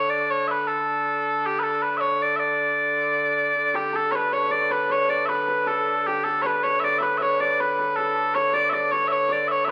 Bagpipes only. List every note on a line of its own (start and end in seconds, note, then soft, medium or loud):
0.10 0.30 D5 medium
0.30 0.48 C#5 medium
0.48 0.67 B4 medium
0.48 0.51 E5 medium
0.67 1.46 A4 medium
1.46 1.59 G4 medium
1.59 1.82 A4 medium
1.59 1.63 B4 medium
1.82 1.97 B4 medium
1.97 2.22 C#5 medium
1.97 2.00 E5 medium
2.22 2.36 D5 medium
2.36 3.76 D5 medium
2.36 2.39 E5 medium
3.76 3.96 G4 medium
3.96 4.12 A4 medium
4.12 4.33 B4 medium
4.12 4.16 C#5 medium
4.33 4.51 C#5 medium
4.51 4.71 D5 medium
4.71 4.92 B4 medium
4.92 5.10 C#5 medium
5.10 5.25 D5 medium
5.25 5.68 B4 medium
5.25 5.29 E5 medium
5.68 6.07 A4 medium
6.07 6.24 G4 medium
6.24 6.42 A4 medium
6.42 6.46 C#5 medium
6.46 6.63 B4 medium
6.63 6.80 C#5 medium
6.80 6.84 E5 medium
6.84 6.98 D5 medium
6.98 7.03 E5 medium
7.03 7.18 B4 medium
7.18 7.22 E5 medium
7.22 7.40 C#5 medium
7.40 7.60 D5 medium
7.60 7.96 B4 medium
7.96 8.35 A4 medium
8.35 8.54 C#5 medium
8.54 8.69 D5 medium
8.69 8.91 D5 medium
8.69 8.73 E5 medium
8.91 9.08 C#5 medium
9.08 9.12 E5 medium
9.12 9.32 C#5 medium
9.32 9.48 D5 medium
9.48 9.65 C#5 medium
9.48 9.51 E5 medium
9.65 9.69 E5 medium